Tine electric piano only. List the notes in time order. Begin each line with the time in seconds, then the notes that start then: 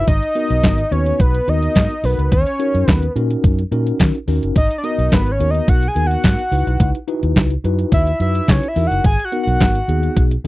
0.35 B3 D#4 F#4 A#4
0.91 B3 D#4 F#4 B4
1.47 B3 D#4 F#4 A#4
2.03 B3 D#4 F#4 A#4
2.59 C#4 D#4 F#4 A#4
3.16 C#4 D#4 F#4 A#4
3.72 C#4 D#4 F#4 A#4
4.28 C#4 D#4 F#4 A#4
4.84 B3 D#4 F#4 A#4
5.40 B3 D#4 F#4 A#4
5.95 B3 D#4 F#4 A#4
6.51 D#4 E4 F#4 B4
7.08 D#4 E4 F#4 B4
7.64 D#4 E4 F#4 B4
8.20 D#4 E4 F#4 B4
8.76 D#4 E4 F#4 A#4
9.32 B3 D#4 F#4 A#4
9.88 B3 D#4 F#4 G#4